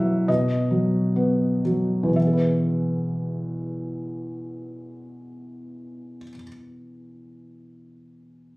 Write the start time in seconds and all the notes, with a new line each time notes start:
Already playing: B2 F#3 E4 E5 F#5
0.28 B2 D#5
0.71 F#3
1.16 B3
1.65 F#3
2.03 E2
2.09 B2
2.15 E3 E5
2.21 B3
2.27 G#4
2.33 B4